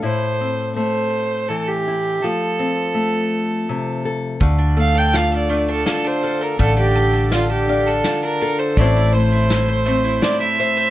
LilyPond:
<<
  \new Staff \with { instrumentName = "Fiddle" } { \time 3/4 \key d \minor \tempo 4 = 82 c''4 c''4 a'16 g'8. | a'2~ a'8 r8 | r8 f''16 g''16 f''16 d''8 a'16 a'16 c''8 bes'16 | a'16 g'8. f'16 g'8 a'8 bes'8 c''16 |
d''8 c''4. d''16 e''8. | }
  \new Staff \with { instrumentName = "Mandolin" } { \time 3/4 \key d \minor r2. | r2. | <a f''>16 d'16 a'16 d'16 f''16 a'16 <a f''>16 d'16 a'16 d'16 f''16 a'16 | <a f''>16 d'16 a'16 d'16 f''16 a'16 f''16 d'8 d'16 f''16 a'16 |
<a e''>16 e'16 c''16 e'16 e''16 c''16 <a e''>16 e'16 c''16 e'16 e''16 c''16 | }
  \new Staff \with { instrumentName = "Nylon-string guitar" } { \time 3/4 \key d \minor << { <e' a'>8 c'2 e'8 | f'8 c'2 a'8~ | a'4 f'8 d'8 f'8 a'8~ | a'4 d'8 d'8 f'8 a'8 |
<a c' e' c''>4 e'8 c'8 e'8 c''8 | } \\ { a,4 a4 e4 | f4 a4 c4 | d8 a2~ a8 | d2. |
a,8 a2~ a8 | } >> }
  \new Staff \with { instrumentName = "Fingered electric bass" } { \clef bass \time 3/4 \key d \minor r2. | r2. | d,2 r4 | a,,2 r4 |
a,,2 r4 | }
  \new DrumStaff \with { instrumentName = "Drums" } \drummode { \time 3/4 r4 r4 r4 | r4 r4 r4 | <hh bd>4 <hh sn>4 <hh sn>4 | <hh bd>4 <hh sn>4 <hh sn>4 |
<hh bd>4 <hh sn>4 <hh sn>4 | }
>>